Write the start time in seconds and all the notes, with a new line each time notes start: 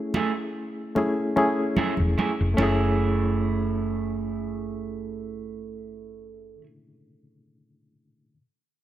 Already playing: A3 C#4 E4 G#4
0.14 A3 E4 G#4, high conga
0.95 A3 C#4 E4 G#4, muted conga
1.36 A3 C#4 E4 G#4, muted conga
1.77 A3 E4 G#4, muted fingered electric bass stroke, high conga
1.97 E1, high conga
2.18 A3 E4 G#4, high conga
2.41 F1
2.54 A3 C#4, muted conga
2.58 F#1 E4 G#4
2.63 G#4